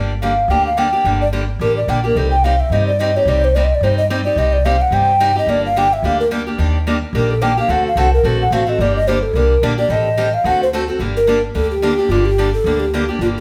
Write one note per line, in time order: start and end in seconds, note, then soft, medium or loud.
0.00 0.38 G1 medium
0.00 0.12 D3 medium
0.00 0.12 G3 medium
0.00 0.12 A#3 medium
0.00 0.13 D4 medium
0.00 0.13 G4 medium
0.22 0.32 D3 medium
0.22 0.32 G3 medium
0.22 0.33 A#3 medium
0.22 0.32 D4 medium
0.22 0.32 G4 medium
0.22 0.52 F5 medium
0.48 0.93 D2 medium
0.48 0.68 D3 medium
0.48 0.68 G3 medium
0.48 0.68 A#3 medium
0.48 0.69 D4 medium
0.48 0.69 G4 medium
0.48 0.66 G5 medium
0.67 0.80 F5 medium
0.77 0.87 D3 medium
0.77 0.87 G3 medium
0.77 0.87 A#3 medium
0.77 0.88 D4 medium
0.77 0.88 G4 medium
0.77 1.21 G5 medium
0.93 1.04 A#3 soft
0.93 1.04 D4 soft
0.93 1.04 G4 medium
1.04 1.49 G1 medium
1.04 1.23 D3 medium
1.04 1.23 G3 medium
1.04 1.23 A#3 medium
1.04 1.24 D4 medium
1.04 1.24 G4 medium
1.21 1.28 D5 medium
1.33 1.43 D3 medium
1.33 1.43 G3 medium
1.33 1.43 A#3 medium
1.33 1.43 D4 medium
1.33 1.43 G4 medium
1.59 1.83 A1 medium
1.59 1.79 D3 medium
1.59 1.79 G3 medium
1.59 1.79 A#3 medium
1.59 1.79 D4 medium
1.59 1.79 G4 medium
1.59 1.76 A#4 medium
1.77 1.91 D5 soft
1.87 2.11 A#1 medium
1.87 1.98 D3 medium
1.87 1.98 G3 medium
1.87 1.99 A#3 medium
1.87 1.99 D4 medium
1.87 1.99 G4 medium
1.87 2.04 G5 medium
2.04 2.16 A#3 soft
2.04 2.16 D4 soft
2.04 2.15 G4 medium
2.04 2.19 A#4 medium
2.15 2.60 C2 medium
2.15 2.34 C3 medium
2.15 2.35 G3 medium
2.15 2.35 C4 medium
2.15 2.35 D#4 medium
2.15 2.35 G4 medium
2.15 2.30 A4 medium
2.31 2.46 G5 medium
2.44 2.54 C3 medium
2.44 2.54 G3 medium
2.44 2.55 C4 medium
2.44 2.54 D#4 medium
2.44 2.55 G4 medium
2.44 2.62 F5 medium
2.60 2.74 E5 medium
2.70 3.15 G2 medium
2.70 2.90 C3 medium
2.70 2.90 G3 medium
2.70 2.90 C4 medium
2.70 2.90 D#4 medium
2.70 2.90 G4 medium
2.70 2.86 D#5 medium
2.87 3.01 D5 medium
2.99 3.09 C3 medium
2.99 3.10 G3 medium
2.99 3.10 C4 medium
2.99 3.10 D#4 medium
2.99 3.10 G4 medium
2.99 3.18 D#5 medium
3.16 3.27 C4 soft
3.16 3.27 D#4 soft
3.16 3.27 G4 medium
3.16 3.30 C#5 medium
3.25 3.70 C2 medium
3.25 3.45 C3 medium
3.25 3.46 G3 medium
3.25 3.46 C4 medium
3.25 3.46 D#4 medium
3.25 3.46 G4 medium
3.25 3.46 D5 medium
3.44 3.57 C5 medium
3.55 3.65 C3 medium
3.55 3.65 G3 medium
3.55 3.65 C4 medium
3.55 3.66 D#4 medium
3.55 3.66 G4 medium
3.55 3.66 D5 medium
3.64 3.76 D#5 medium
3.75 3.85 D5 medium
3.81 4.26 G2 medium
3.81 4.01 C3 medium
3.81 4.01 G3 medium
3.81 4.01 C4 medium
3.81 4.01 D#4 medium
3.81 4.01 G4 medium
3.81 3.97 C5 medium
3.98 4.05 D#5 medium
4.10 4.20 C3 medium
4.10 4.20 G3 medium
4.10 4.20 C4 medium
4.10 4.20 D#4 medium
4.10 4.20 G4 medium
4.25 4.37 C4 soft
4.25 4.37 D#4 soft
4.25 4.37 G4 medium
4.25 4.39 D5 medium
4.36 4.81 C2 medium
4.36 4.56 C3 medium
4.36 4.56 G3 medium
4.36 4.56 C4 medium
4.36 4.56 D#4 medium
4.36 4.56 G4 medium
4.36 4.54 D#5 medium
4.53 4.67 D5 medium
4.65 4.75 C3 medium
4.65 4.75 G3 medium
4.65 4.75 C4 medium
4.65 4.75 D#4 medium
4.65 4.76 G4 medium
4.65 4.83 F5 medium
4.82 4.95 F#5 medium
4.91 5.36 G2 medium
4.91 5.11 C3 medium
4.91 5.11 G3 medium
4.91 5.11 C4 medium
4.91 5.11 D#4 medium
4.91 5.11 G4 medium
4.91 5.36 G5 medium
5.20 5.31 C3 medium
5.20 5.30 G3 medium
5.20 5.31 C4 medium
5.20 5.31 D#4 medium
5.20 5.31 G4 medium
5.36 5.48 C4 soft
5.36 5.48 D#4 soft
5.36 5.47 G4 medium
5.36 5.51 D#5 medium
5.47 5.91 G1 medium
5.47 5.67 D3 medium
5.47 5.67 G3 medium
5.47 5.67 A#3 medium
5.47 5.67 D4 medium
5.47 5.67 G4 medium
5.47 5.65 D5 medium
5.66 5.80 F5 medium
5.76 5.86 D3 medium
5.76 5.86 G3 medium
5.76 5.86 A#3 medium
5.76 5.87 D4 medium
5.76 5.87 G4 medium
5.76 5.95 G5 medium
5.93 6.07 E5 medium
6.03 6.47 D2 medium
6.03 6.22 D3 medium
6.03 6.22 G3 medium
6.03 6.22 A#3 medium
6.03 6.22 D4 medium
6.03 6.23 G4 medium
6.03 6.20 F5 medium
6.20 6.27 A#4 medium
6.31 6.41 D3 medium
6.31 6.41 G3 medium
6.31 6.41 A#3 medium
6.31 6.41 D4 medium
6.31 6.41 G4 medium
6.47 6.58 A#3 soft
6.47 6.58 D4 medium
6.47 6.58 G4 medium
6.58 7.03 D#2 medium
6.58 6.77 D#3 medium
6.58 6.77 G3 medium
6.58 6.77 A#3 medium
6.58 6.77 D4 medium
6.58 6.77 G4 medium
6.87 6.97 D#3 medium
6.87 6.97 G3 medium
6.87 6.97 A#3 medium
6.87 6.97 D4 medium
6.87 6.97 G4 medium
7.13 7.57 A#1 medium
7.13 7.33 D#3 medium
7.13 7.33 G3 medium
7.13 7.33 A#3 medium
7.13 7.33 D4 medium
7.13 7.33 G4 medium
7.13 7.32 A#4 medium
7.31 7.44 A4 medium
7.41 7.52 D#3 medium
7.41 7.51 G3 medium
7.41 7.52 A#3 medium
7.41 7.52 D4 medium
7.41 7.52 G4 medium
7.41 7.57 G5 medium
7.57 7.69 A#3 soft
7.57 7.69 D4 soft
7.57 7.69 G4 medium
7.57 7.73 F5 medium
7.68 7.91 D2 medium
7.68 7.87 D3 medium
7.68 7.87 A3 medium
7.68 7.88 C4 medium
7.68 7.88 F#4 medium
7.68 7.88 A4 medium
7.68 7.86 F#5 medium
7.88 8.00 F5 medium
7.96 8.19 C2 medium
7.96 8.07 D3 medium
7.96 8.07 A3 medium
7.96 8.07 C4 medium
7.96 8.07 F#4 medium
7.96 8.07 A4 medium
7.96 8.13 F#5 medium
8.13 8.28 A#4 medium
8.23 8.47 A#1 medium
8.23 8.43 D3 medium
8.23 8.42 A3 medium
8.23 8.43 C4 medium
8.23 8.43 F#4 medium
8.23 8.43 A4 medium
8.23 8.41 A4 medium
8.42 8.55 F#5 medium
8.50 8.74 A1 medium
8.50 8.62 D3 medium
8.50 8.62 A3 medium
8.50 8.62 C4 medium
8.50 8.63 F#4 medium
8.50 8.62 A4 medium
8.50 8.71 F5 medium
8.66 8.79 C4 soft
8.66 8.79 F#4 medium
8.66 8.78 A4 medium
8.66 8.83 D#5 medium
8.78 9.23 G1 medium
8.78 8.98 D3 medium
8.78 8.98 G3 medium
8.78 8.98 A#3 medium
8.78 8.98 D4 medium
8.78 8.99 G4 medium
8.78 8.95 D5 medium
8.96 9.09 D#5 loud
9.08 9.17 D3 medium
9.08 9.17 G3 medium
9.08 9.18 A#3 medium
9.08 9.18 D4 medium
9.08 9.18 G4 medium
9.08 9.24 C5 medium
9.23 9.37 A4 medium
9.33 9.57 C2 medium
9.33 9.53 D3 medium
9.33 9.53 G3 medium
9.33 9.53 A#3 medium
9.33 9.54 D4 medium
9.33 9.54 G4 medium
9.33 9.62 A#4 medium
9.62 9.85 A#1 medium
9.62 9.73 D3 medium
9.62 9.73 G3 medium
9.62 9.73 A#3 medium
9.62 9.73 D4 loud
9.62 9.73 G4 medium
9.78 9.90 A#3 soft
9.78 9.89 D4 medium
9.78 9.89 G4 medium
9.78 9.93 D5 medium
9.89 10.33 A1 medium
9.89 10.08 D#3 medium
9.89 10.08 G3 medium
9.89 10.08 C4 medium
9.89 10.08 G4 medium
9.89 10.08 A4 medium
9.89 10.35 D#5 medium
10.17 10.27 D#3 medium
10.17 10.27 G3 medium
10.17 10.27 C4 medium
10.17 10.28 G4 medium
10.17 10.28 A4 medium
10.34 10.47 F5 medium
10.44 10.88 D2 medium
10.44 10.63 D3 medium
10.44 10.63 A3 medium
10.44 10.64 C4 medium
10.44 10.64 F#4 medium
10.44 10.64 A4 medium
10.44 10.61 F#5 medium
10.63 10.69 C5 medium
10.73 10.83 D3 medium
10.73 10.83 A3 medium
10.73 10.83 C4 medium
10.73 10.83 F#4 medium
10.73 10.83 A4 medium
10.88 11.00 C4 soft
10.88 11.00 F#4 medium
10.88 10.99 A4 medium
10.99 11.43 G1 medium
10.99 11.18 D3 medium
10.99 11.18 G3 medium
10.99 11.18 A#3 medium
10.99 11.18 D4 medium
10.99 11.19 G4 medium
11.17 11.42 A#4 medium
11.27 11.37 D3 medium
11.27 11.37 G3 medium
11.27 11.37 A#3 medium
11.27 11.38 D4 medium
11.27 11.38 G4 medium
11.55 11.99 D2 medium
11.55 11.73 D3 medium
11.55 11.73 G3 medium
11.55 11.73 A#3 medium
11.55 11.73 D4 medium
11.55 11.73 G4 medium
11.55 11.70 A4 medium
11.71 12.12 G4 medium
11.82 11.92 D3 medium
11.82 11.92 G3 medium
11.82 11.93 A#3 medium
11.82 11.93 D4 medium
11.82 11.93 G4 medium
11.98 12.10 A#3 soft
11.98 12.10 D4 soft
11.98 12.10 G4 medium
12.09 12.53 G1 medium
12.09 12.29 D3 medium
12.09 12.29 G3 medium
12.09 12.29 A#3 medium
12.09 12.29 D4 medium
12.09 12.27 F4 medium
12.09 12.29 G4 medium
12.26 12.53 G4 medium
12.38 12.48 D3 medium
12.38 12.48 G3 medium
12.38 12.48 A#3 medium
12.38 12.48 D4 medium
12.38 12.48 G4 medium
12.54 12.81 A4 medium
12.64 13.09 D2 medium
12.64 12.84 D3 medium
12.64 12.84 G3 medium
12.64 12.84 A#3 medium
12.64 12.84 D4 medium
12.64 12.84 G4 medium
12.80 13.08 G4 medium
12.94 13.03 D3 medium
12.94 13.04 G3 medium
12.94 13.04 A#3 medium
12.94 13.04 D4 medium
12.94 13.04 G4 medium
13.08 13.21 A#3 soft
13.08 13.21 D4 soft
13.08 13.20 G4 medium
13.19 13.40 G1 medium
13.19 13.39 D3 medium
13.19 13.39 G3 medium
13.19 13.39 A#3 medium
13.19 13.39 D4 medium
13.19 13.27 F4 medium
13.19 13.39 G4 medium